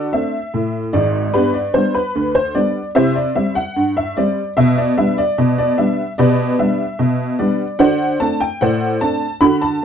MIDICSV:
0, 0, Header, 1, 2, 480
1, 0, Start_track
1, 0, Key_signature, 1, "major"
1, 0, Tempo, 806452
1, 799, Time_signature, 2, 2, 24, 8
1, 5861, End_track
2, 0, Start_track
2, 0, Title_t, "Honky-tonk piano"
2, 0, Program_c, 0, 3
2, 0, Note_on_c, 0, 66, 62
2, 0, Note_on_c, 0, 69, 65
2, 65, Note_off_c, 0, 66, 0
2, 65, Note_off_c, 0, 69, 0
2, 76, Note_on_c, 0, 76, 85
2, 79, Note_on_c, 0, 57, 42
2, 82, Note_on_c, 0, 60, 46
2, 86, Note_on_c, 0, 62, 47
2, 211, Note_off_c, 0, 57, 0
2, 213, Note_off_c, 0, 60, 0
2, 216, Note_off_c, 0, 62, 0
2, 320, Note_on_c, 0, 45, 66
2, 461, Note_off_c, 0, 76, 0
2, 524, Note_off_c, 0, 45, 0
2, 554, Note_on_c, 0, 74, 84
2, 556, Note_on_c, 0, 32, 69
2, 557, Note_on_c, 0, 44, 72
2, 750, Note_off_c, 0, 32, 0
2, 750, Note_off_c, 0, 44, 0
2, 785, Note_off_c, 0, 74, 0
2, 795, Note_on_c, 0, 71, 88
2, 798, Note_on_c, 0, 43, 86
2, 801, Note_on_c, 0, 67, 74
2, 803, Note_on_c, 0, 62, 70
2, 811, Note_on_c, 0, 59, 51
2, 912, Note_off_c, 0, 67, 0
2, 913, Note_off_c, 0, 62, 0
2, 915, Note_on_c, 0, 74, 67
2, 918, Note_off_c, 0, 71, 0
2, 940, Note_off_c, 0, 59, 0
2, 1003, Note_off_c, 0, 43, 0
2, 1035, Note_on_c, 0, 72, 80
2, 1037, Note_off_c, 0, 74, 0
2, 1040, Note_on_c, 0, 55, 47
2, 1043, Note_on_c, 0, 59, 39
2, 1044, Note_on_c, 0, 62, 47
2, 1158, Note_off_c, 0, 72, 0
2, 1158, Note_on_c, 0, 71, 86
2, 1172, Note_off_c, 0, 55, 0
2, 1174, Note_off_c, 0, 59, 0
2, 1175, Note_off_c, 0, 62, 0
2, 1281, Note_on_c, 0, 38, 69
2, 1387, Note_off_c, 0, 71, 0
2, 1398, Note_on_c, 0, 72, 87
2, 1484, Note_off_c, 0, 38, 0
2, 1516, Note_on_c, 0, 74, 87
2, 1519, Note_off_c, 0, 72, 0
2, 1520, Note_on_c, 0, 55, 41
2, 1521, Note_on_c, 0, 59, 41
2, 1526, Note_on_c, 0, 62, 44
2, 1652, Note_off_c, 0, 55, 0
2, 1653, Note_off_c, 0, 59, 0
2, 1656, Note_off_c, 0, 62, 0
2, 1709, Note_off_c, 0, 74, 0
2, 1756, Note_on_c, 0, 76, 105
2, 1758, Note_on_c, 0, 48, 87
2, 1762, Note_on_c, 0, 72, 73
2, 1764, Note_on_c, 0, 67, 75
2, 1770, Note_on_c, 0, 64, 61
2, 1873, Note_off_c, 0, 72, 0
2, 1874, Note_off_c, 0, 67, 0
2, 1878, Note_off_c, 0, 76, 0
2, 1878, Note_on_c, 0, 74, 73
2, 1900, Note_off_c, 0, 64, 0
2, 1964, Note_off_c, 0, 48, 0
2, 1996, Note_on_c, 0, 76, 76
2, 1999, Note_on_c, 0, 55, 48
2, 2000, Note_off_c, 0, 74, 0
2, 2003, Note_on_c, 0, 60, 51
2, 2115, Note_on_c, 0, 78, 93
2, 2119, Note_off_c, 0, 76, 0
2, 2132, Note_off_c, 0, 55, 0
2, 2135, Note_off_c, 0, 60, 0
2, 2239, Note_on_c, 0, 43, 72
2, 2347, Note_off_c, 0, 78, 0
2, 2361, Note_on_c, 0, 76, 91
2, 2445, Note_off_c, 0, 43, 0
2, 2481, Note_on_c, 0, 74, 85
2, 2482, Note_off_c, 0, 76, 0
2, 2485, Note_on_c, 0, 55, 52
2, 2487, Note_on_c, 0, 60, 54
2, 2616, Note_off_c, 0, 55, 0
2, 2618, Note_off_c, 0, 60, 0
2, 2674, Note_off_c, 0, 74, 0
2, 2719, Note_on_c, 0, 76, 109
2, 2723, Note_on_c, 0, 47, 91
2, 2841, Note_off_c, 0, 76, 0
2, 2842, Note_on_c, 0, 74, 80
2, 2927, Note_off_c, 0, 47, 0
2, 2961, Note_on_c, 0, 76, 89
2, 2963, Note_off_c, 0, 74, 0
2, 2963, Note_on_c, 0, 55, 50
2, 2966, Note_on_c, 0, 59, 50
2, 2968, Note_on_c, 0, 62, 51
2, 3083, Note_off_c, 0, 76, 0
2, 3083, Note_on_c, 0, 74, 94
2, 3095, Note_off_c, 0, 55, 0
2, 3097, Note_off_c, 0, 59, 0
2, 3099, Note_off_c, 0, 62, 0
2, 3203, Note_on_c, 0, 47, 78
2, 3275, Note_off_c, 0, 74, 0
2, 3323, Note_on_c, 0, 74, 91
2, 3407, Note_off_c, 0, 47, 0
2, 3439, Note_on_c, 0, 76, 79
2, 3443, Note_off_c, 0, 74, 0
2, 3443, Note_on_c, 0, 55, 44
2, 3445, Note_on_c, 0, 59, 43
2, 3447, Note_on_c, 0, 62, 52
2, 3575, Note_off_c, 0, 55, 0
2, 3576, Note_off_c, 0, 59, 0
2, 3578, Note_off_c, 0, 62, 0
2, 3633, Note_off_c, 0, 76, 0
2, 3679, Note_on_c, 0, 74, 91
2, 3683, Note_on_c, 0, 47, 89
2, 3686, Note_on_c, 0, 67, 68
2, 3686, Note_on_c, 0, 71, 68
2, 3887, Note_off_c, 0, 47, 0
2, 3908, Note_off_c, 0, 67, 0
2, 3908, Note_off_c, 0, 71, 0
2, 3909, Note_off_c, 0, 74, 0
2, 3923, Note_on_c, 0, 76, 81
2, 3925, Note_on_c, 0, 55, 50
2, 3928, Note_on_c, 0, 59, 44
2, 3930, Note_on_c, 0, 62, 56
2, 4056, Note_off_c, 0, 55, 0
2, 4058, Note_off_c, 0, 59, 0
2, 4060, Note_off_c, 0, 62, 0
2, 4160, Note_on_c, 0, 47, 75
2, 4365, Note_off_c, 0, 47, 0
2, 4379, Note_off_c, 0, 76, 0
2, 4398, Note_on_c, 0, 74, 81
2, 4402, Note_on_c, 0, 55, 51
2, 4405, Note_on_c, 0, 59, 52
2, 4406, Note_on_c, 0, 62, 53
2, 4534, Note_off_c, 0, 55, 0
2, 4536, Note_off_c, 0, 59, 0
2, 4537, Note_off_c, 0, 62, 0
2, 4628, Note_off_c, 0, 74, 0
2, 4637, Note_on_c, 0, 78, 103
2, 4639, Note_on_c, 0, 50, 93
2, 4642, Note_on_c, 0, 72, 80
2, 4643, Note_on_c, 0, 74, 75
2, 4650, Note_on_c, 0, 66, 57
2, 4780, Note_off_c, 0, 66, 0
2, 4845, Note_off_c, 0, 50, 0
2, 4865, Note_off_c, 0, 72, 0
2, 4866, Note_off_c, 0, 74, 0
2, 4867, Note_off_c, 0, 78, 0
2, 4881, Note_on_c, 0, 81, 96
2, 4882, Note_on_c, 0, 57, 51
2, 4886, Note_on_c, 0, 60, 45
2, 4890, Note_on_c, 0, 62, 55
2, 5002, Note_off_c, 0, 81, 0
2, 5003, Note_on_c, 0, 79, 92
2, 5014, Note_off_c, 0, 57, 0
2, 5017, Note_off_c, 0, 60, 0
2, 5020, Note_off_c, 0, 62, 0
2, 5122, Note_off_c, 0, 79, 0
2, 5125, Note_on_c, 0, 78, 85
2, 5129, Note_on_c, 0, 45, 73
2, 5132, Note_on_c, 0, 72, 71
2, 5132, Note_on_c, 0, 74, 64
2, 5330, Note_off_c, 0, 45, 0
2, 5351, Note_off_c, 0, 72, 0
2, 5351, Note_off_c, 0, 74, 0
2, 5352, Note_off_c, 0, 78, 0
2, 5363, Note_on_c, 0, 81, 97
2, 5366, Note_on_c, 0, 57, 46
2, 5369, Note_on_c, 0, 60, 44
2, 5371, Note_on_c, 0, 62, 54
2, 5497, Note_off_c, 0, 57, 0
2, 5499, Note_off_c, 0, 60, 0
2, 5500, Note_off_c, 0, 62, 0
2, 5554, Note_off_c, 0, 81, 0
2, 5599, Note_on_c, 0, 83, 109
2, 5603, Note_on_c, 0, 50, 94
2, 5614, Note_on_c, 0, 66, 67
2, 5720, Note_off_c, 0, 83, 0
2, 5723, Note_on_c, 0, 81, 86
2, 5742, Note_off_c, 0, 66, 0
2, 5806, Note_off_c, 0, 50, 0
2, 5861, Note_off_c, 0, 81, 0
2, 5861, End_track
0, 0, End_of_file